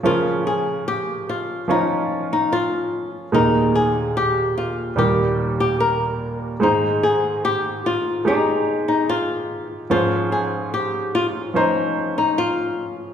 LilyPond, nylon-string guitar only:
\new Staff \with { instrumentName = "Nylon-string guitar" } { \time 4/4 \key des \lydian \tempo 4 = 73 f'8 aes'8 g'8 f'8 ees'8. ees'16 f'8. r16 | ees'8 aes'8 g'8 f'8 g'8. g'16 bes'8. r16 | ees'8 aes'8 g'8 f'8 ees'8. ees'16 f'8. r16 | f'8 aes'8 g'8 f'8 ees'8. ees'16 f'8. r16 | }